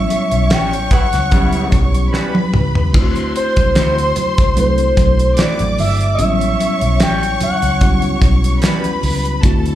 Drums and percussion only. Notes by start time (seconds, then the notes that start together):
0.10 closed hi-hat
0.31 closed hi-hat, high conga
0.50 snare, closed hi-hat
0.73 closed hi-hat, muted conga
0.91 kick, closed hi-hat, high conga, low conga
1.13 snare, closed hi-hat
1.31 kick, closed hi-hat, muted conga, high conga
1.53 closed hi-hat
1.72 kick, closed hi-hat, high conga
1.94 closed hi-hat
2.14 snare
2.35 high tom, high conga
2.54 mid tom, low conga
2.75 floor tom
2.94 kick, crash, muted conga, low conga
3.15 closed hi-hat, muted conga
3.36 closed hi-hat
3.56 kick, closed hi-hat, high conga
3.75 snare, closed hi-hat
3.98 closed hi-hat, muted conga
4.16 closed hi-hat, high conga, low conga
4.38 kick, closed hi-hat
4.57 closed hi-hat, muted conga, high conga
4.78 closed hi-hat
4.97 kick, snare, closed hi-hat, high conga
5.19 closed hi-hat
5.37 snare, closed hi-hat, muted conga
5.59 closed hi-hat, muted conga, high conga
5.79 open hi-hat, low conga
6.01 closed hi-hat
6.19 closed hi-hat, muted conga, low conga
6.40 closed hi-hat, muted conga
6.60 closed hi-hat
6.81 closed hi-hat, high conga
7.00 snare, closed hi-hat
7.23 closed hi-hat
7.40 closed hi-hat, high conga, low conga
7.62 closed hi-hat
7.81 kick, closed hi-hat, high conga
8.02 closed hi-hat, muted conga
8.22 kick, snare, closed hi-hat, high conga
8.44 closed hi-hat
8.62 snare, closed hi-hat, muted conga
8.84 closed hi-hat, muted conga, high conga
9.03 open hi-hat, low conga
9.25 closed hi-hat
9.43 kick, closed hi-hat, muted conga, low conga
9.66 closed hi-hat, muted conga